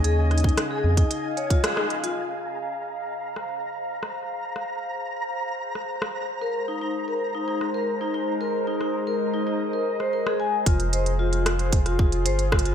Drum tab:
HH |x-----------x--xx---x---x-----------------x-----x-----------x-----x-----x-----------x-----x-----|------------------------------------------------------------------------------------------------|------------------------------------------------------------------------------------------------|------------------------------------------------------------------------------------------------|
SD |------------r-----------r-----------------------------------------------r-----r-----------------|------------------------------------------------------r-----------------------------r-----------|------------r-----------------------------------------------------r-----------r-----------------|------------------------------------------------------r-----------------------------------------|
BD |------------------o-----------------------o-----------------------o-----------------------------|------------------------------------------------------------------------------------------------|------------------------------------------------------------------------------------------------|------------------------------------------------------------------------------------------------|

HH |------------------------------------------------------------------------------------------------|x-----x-----x-----x-----------x-----x-----x-----x-----x-----------x-----x-----x--------x--x-----|
SD |------------r-----------------------------------------------------r-----------r-----------------|------------------------------------r-----------------r-----------------------------r-----------|
BD |------------------------------------------------------------------------------------------------|o-----------------------------------------------o-----------o-----------------------o-----------|